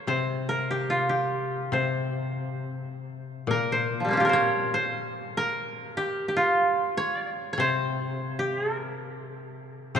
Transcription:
0.00 0.34 A#4 medium
0.00 0.14 C#5 medium
0.07 1.71 C3 soft
0.07 1.73 C5 medium
0.49 2.33 A#4 medium
0.71 1.09 G4 soft
0.90 3.09 F4 medium
1.09 3.13 G4 medium
1.72 4.31 C3 soft
1.72 3.45 C5 soft
3.47 5.96 A#2 soft
3.47 4.24 A#4 medium
3.72 4.29 C5 medium
4.00 4.26 F3 soft
4.05 4.23 G3 soft
4.05 6.87 A#3 soft
4.11 4.39 C4 soft
4.11 4.35 C#4 soft
4.17 6.36 F4 soft
4.17 5.97 G4 soft
4.25 5.37 A#4 soft
4.29 4.74 C5 soft
4.29 4.80 C#5 medium
4.74 6.46 C5 medium
5.37 7.21 A#4 medium
5.97 6.28 G4 medium
6.28 8.32 G4 soft
6.37 8.55 F4 medium
6.97 7.53 C#5 medium
7.53 7.66 C#5 medium
7.58 9.94 C3 soft
7.58 9.31 C5 medium
8.39 8.75 G4 medium
8.75 10.00 A#4 medium
9.95 10.00 C3 medium
9.95 10.00 C5 medium

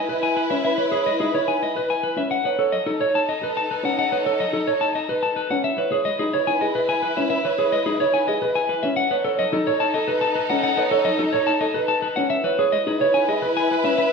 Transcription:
0.00 2.13 E4 medium
0.00 2.13 B4 medium
0.00 0.13 D#5 medium
0.08 0.27 B4 medium
0.23 0.41 G#5 medium
0.37 0.55 B4 medium
0.50 0.68 C#4 medium
0.50 0.63 E5 medium
0.65 0.82 E5 medium
0.78 0.96 B4 medium
0.78 0.90 C#5 medium
0.92 1.10 G#4 medium
0.92 1.10 C#5 medium
1.06 1.24 D#5 medium
1.20 1.38 D#4 medium
1.20 1.38 G#4 medium
1.34 1.52 C#5 medium
1.48 1.66 G#5 medium
1.63 1.80 D#5 medium
1.75 1.93 B4 medium
1.75 1.94 B4 medium
1.90 2.08 G#5 medium
2.03 2.21 B4 medium
2.16 2.35 C#4 medium
2.16 2.31 E5 medium
2.31 5.46 D#4 medium
2.31 5.46 A4 medium
2.31 2.49 F#5 medium
2.45 2.63 B4 medium
2.45 2.57 C#5 medium
2.59 2.77 A4 medium
2.59 2.77 C#5 medium
2.72 2.91 D#5 medium
2.86 3.05 D#4 medium
2.86 3.05 A4 medium
3.00 3.18 C#5 medium
3.00 3.19 C#5 medium
3.15 3.33 A5 medium
3.29 3.46 D#5 medium
3.42 3.60 B4 medium
3.42 3.61 B4 medium
3.57 3.74 A5 medium
3.71 3.88 B4 medium
3.83 4.02 C#4 medium
3.83 3.97 F#5 medium
3.99 4.16 F#5 medium
4.11 4.26 B4 medium
4.11 4.23 C#5 medium
4.25 4.44 A4 medium
4.25 4.43 C#5 medium
4.40 4.58 D#5 medium
4.53 4.71 D#4 medium
4.53 4.71 A4 medium
4.67 4.85 C#5 medium
4.81 4.99 A5 medium
4.95 5.13 D#5 medium
5.09 5.27 B4 medium
5.23 5.41 A5 medium
5.36 5.54 B4 medium
5.50 5.68 C#4 medium
5.50 5.64 F#5 medium
5.64 8.80 E4 medium
5.64 8.80 B4 medium
5.64 5.82 E5 medium
5.78 5.96 B4 medium
5.78 5.90 C#5 medium
5.92 6.10 G#4 medium
5.92 6.10 C#5 medium
6.05 6.24 D#5 medium
6.19 6.38 D#4 medium
6.19 6.38 G#4 medium
6.33 6.52 C#5 medium
6.47 6.66 G#5 medium
6.61 6.79 G#4 medium
6.61 6.79 D#5 medium
6.75 6.93 B4 medium
6.89 7.07 G#5 medium
7.02 7.21 B4 medium
7.17 7.35 C#4 medium
7.17 7.29 E5 medium
7.30 7.49 E5 medium
7.45 7.63 B4 medium
7.45 7.57 C#5 medium
7.58 7.77 G#4 medium
7.58 7.77 C#5 medium
7.72 7.91 D#5 medium
7.86 8.05 D#4 medium
7.86 8.04 G#4 medium
8.00 8.18 C#5 medium
8.14 8.32 G#5 medium
8.28 8.46 G#4 medium
8.28 8.46 D#5 medium
8.42 8.60 B4 medium
8.55 8.74 G#5 medium
8.69 8.88 B4 medium
8.83 9.02 C#4 medium
8.83 8.96 E5 medium
8.96 12.13 D#4 medium
8.96 12.13 A4 medium
8.96 9.15 F#5 medium
9.11 9.29 B4 medium
9.11 9.24 C#5 medium
9.24 9.43 A4 medium
9.24 9.43 C#5 medium
9.39 9.57 D#5 medium
9.53 9.71 D#4 medium
9.53 9.71 A4 medium
9.67 9.85 C#5 medium
9.80 9.99 A5 medium
9.94 10.13 A4 medium
9.94 10.13 D#5 medium
10.08 10.26 B4 medium
10.08 10.27 B4 medium
10.21 10.40 A5 medium
10.35 10.54 B4 medium
10.50 10.68 C#4 medium
10.50 10.62 F#5 medium
10.63 10.82 F#5 medium
10.77 10.91 B4 medium
10.77 10.90 C#5 medium
10.91 11.10 A4 medium
10.91 11.10 C#5 medium
11.05 11.24 D#5 medium
11.19 11.38 D#4 medium
11.19 11.38 A4 medium
11.33 11.51 C#5 medium
11.33 11.52 C#5 medium
11.47 11.65 A5 medium
11.61 11.79 A4 medium
11.61 11.79 D#5 medium
11.74 11.93 B4 medium
11.88 12.07 A5 medium
12.02 12.21 B4 medium
12.16 12.35 C#4 medium
12.16 12.30 F#5 medium
12.30 14.13 E4 medium
12.30 14.13 B4 medium
12.30 12.49 E5 loud
12.44 12.63 B4 medium
12.44 12.57 C#5 medium
12.58 12.77 G#4 medium
12.58 12.77 C#5 medium
12.72 12.91 D#5 medium
12.86 13.05 D#4 medium
12.86 13.05 G#4 medium
13.00 13.18 C#5 medium
13.00 13.19 C#5 medium
13.14 13.32 G#5 medium
13.28 13.46 G#4 medium
13.28 13.46 D#5 medium
13.42 13.60 B4 medium
13.57 13.74 G#5 medium
13.71 13.88 B4 medium
13.84 14.02 C#4 medium
13.84 13.97 E5 medium
13.98 14.13 E5 medium

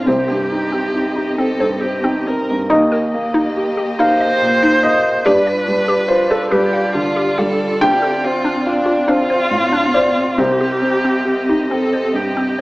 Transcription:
0.00 2.69 C4 medium
0.06 2.66 C2 soft
0.06 0.20 C4 medium
0.06 2.69 G4 soft
0.06 1.29 G4 medium
0.06 2.22 C5 medium
0.06 2.69 D#5 soft
0.28 0.64 G2 soft
0.28 0.41 G4 medium
0.52 0.86 D#4 soft
0.72 0.85 C4 medium
0.72 1.08 G4 soft
0.95 1.30 D#4 soft
1.15 1.29 D#4 medium
1.15 1.51 G4 soft
1.38 1.51 C4 medium
1.38 1.73 C4 soft
1.38 1.82 A4 medium
1.60 1.95 G2 soft
1.60 1.73 C5 medium
1.81 2.18 C4 soft
1.81 2.28 G4 soft
2.04 2.17 C4 medium
2.04 2.39 D#4 soft
2.26 2.61 C4 soft
2.26 2.70 A#4 soft
2.26 2.40 C5 medium
2.51 2.71 G2 soft
2.70 5.23 D#2 medium
2.70 5.22 A#3 medium
2.70 2.83 D#4 medium
2.70 5.22 G4 medium
2.70 3.95 D#5 medium
2.70 5.22 D#5 medium
2.92 3.04 A#4 medium
3.14 3.82 A#3 soft
3.34 3.47 D#4 medium
3.57 4.25 G4 medium
3.77 3.90 G4 medium
3.98 4.67 A#3 soft
3.98 4.12 D#4 medium
3.98 5.27 C5 medium
3.98 4.80 F5 medium
4.20 4.33 D#5 medium
4.41 5.09 A#2 soft
4.63 4.75 D#4 medium
4.83 5.26 A#3 soft
4.83 5.22 D#5 medium
4.83 4.96 D#5 medium
5.25 7.78 G2 medium
5.25 7.82 D4 medium
5.25 10.38 F4 medium
5.25 5.38 G4 medium
5.25 6.50 B4 medium
5.25 6.06 D5 medium
5.25 10.39 D5 medium
5.47 5.59 D5 medium
5.68 6.35 G3 soft
5.88 6.01 G4 medium
6.08 6.77 F4 medium
6.08 6.28 C5 medium
6.30 6.50 A4 medium
6.30 6.43 B4 medium
6.50 7.21 G3 soft
6.50 6.94 G4 medium
6.50 6.64 G4 medium
6.50 7.77 B4 medium
6.73 6.86 F5 medium
6.93 7.64 D3 soft
6.93 7.39 F4 medium
7.16 7.29 G4 medium
7.38 7.82 G3 soft
7.38 7.83 A4 medium
7.38 7.51 F5 medium
7.81 10.35 D2 medium
7.81 12.61 C4 medium
7.81 7.94 D4 medium
7.81 8.26 G4 medium
7.81 9.04 G5 loud
8.02 8.15 A4 medium
8.24 8.91 C4 medium
8.24 8.69 F4 medium
8.44 8.57 D4 medium
8.66 9.11 D4 medium
8.66 9.34 F4 medium
8.86 8.99 F4 medium
9.08 9.77 C4 medium
9.08 9.21 D4 medium
9.08 10.40 F4 medium
9.08 9.91 F5 medium
9.30 9.43 C5 medium
9.51 10.21 A2 soft
9.72 9.86 D4 medium
9.94 10.38 C4 soft
9.94 10.08 C5 medium
9.94 10.35 D5 medium
10.38 12.61 C2 medium
10.38 10.52 C4 medium
10.38 11.63 G4 medium
10.38 12.61 G4 medium
10.38 12.55 C5 medium
10.38 12.61 D#5 medium
10.61 10.74 G4 medium
10.82 11.53 C4 soft
11.04 11.18 C4 medium
11.25 11.97 G4 soft
11.49 11.63 D#4 medium
11.70 12.41 C4 soft
11.70 11.84 C4 medium
11.70 12.16 A4 medium
11.93 12.06 C5 medium
12.13 12.61 G2 soft
12.13 12.61 G4 soft
12.37 12.50 C4 medium

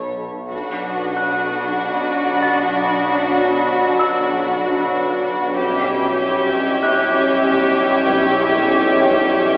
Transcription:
0.00 0.28 B1 soft
0.00 0.48 B1 medium
0.00 0.27 B2 soft
0.00 0.52 A4 soft
0.00 0.20 C#5 soft
0.00 0.48 A5 soft
0.00 0.48 B5 soft
0.00 0.52 C#6 soft
0.00 0.48 A6 soft
0.51 5.53 B1 medium
0.51 5.53 B1 soft
0.51 5.53 B2 soft
0.51 5.53 F#3 soft
0.51 5.53 D4 soft
0.51 5.53 F#4 soft
0.51 5.53 F#5 soft
0.51 5.53 B5 soft
0.51 5.22 D6 soft
0.51 3.58 D#6 soft
0.51 taiko soft
1.17 3.02 F#6 soft
2.42 4.28 A6 soft
3.58 4.59 E6 soft
3.99 5.84 E6 soft
5.57 9.57 B1 soft
5.57 9.57 B1 medium
5.57 9.57 B2 soft
5.57 9.57 G3 soft
5.57 9.57 C#4 soft
5.57 9.57 E4 soft
5.57 9.57 G4 soft
5.57 9.57 C#5 soft
5.57 9.57 E5 soft
5.57 9.57 G6 soft
5.57 taiko soft
6.21 9.57 G#6 soft
6.51 taiko soft
6.83 8.66 E5 soft
6.83 8.66 F#6 soft
8.08 taiko medium
8.54 taiko medium
9.01 taiko medium

